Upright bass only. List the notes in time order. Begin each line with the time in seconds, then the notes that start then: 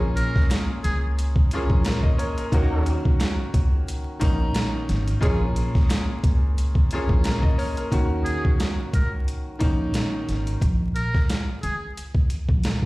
Already playing: A#1
0.85 C#2
1.70 A#1
2.53 D#2
3.54 C#2
4.22 A#1
4.89 G#1
5.22 A#1
6.24 C#2
7.09 A#1
7.92 D#2
8.94 C#2
9.61 A#1
10.29 G#1
10.62 A#1
11.63 C#2
12.49 A#1